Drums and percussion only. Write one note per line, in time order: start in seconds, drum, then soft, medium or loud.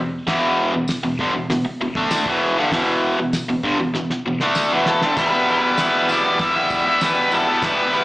0.28 kick loud
0.28 snare loud
0.28 crash medium
0.88 snare loud
0.88 open hi-hat medium
0.88 tambourine medium
1.19 kick loud
1.50 snare loud
1.50 open hi-hat medium
1.95 kick loud
2.11 snare loud
2.11 open hi-hat medium
2.11 tambourine loud
2.26 kick medium
2.72 kick loud
2.72 snare loud
2.72 open hi-hat medium
3.33 snare loud
3.33 open hi-hat medium
3.33 tambourine medium
3.63 kick medium
3.94 snare medium
4.10 snare medium
4.40 snare medium
4.55 snare medium
4.55 tambourine medium
4.86 snare medium
5.02 snare medium
5.17 kick loud
5.17 snare loud
5.17 crash loud
5.17 tambourine medium
5.48 tambourine soft
5.77 snare loud
5.77 open hi-hat medium
5.77 tambourine medium
6.09 tambourine medium
6.39 kick loud
6.39 snare loud
6.39 open hi-hat medium
6.39 tambourine soft
6.70 kick medium
6.70 tambourine medium
7.01 snare loud
7.01 open hi-hat medium
7.01 tambourine loud
7.31 tambourine medium
7.62 kick loud
7.62 snare loud
7.62 open hi-hat medium
7.62 tambourine medium
7.93 tambourine soft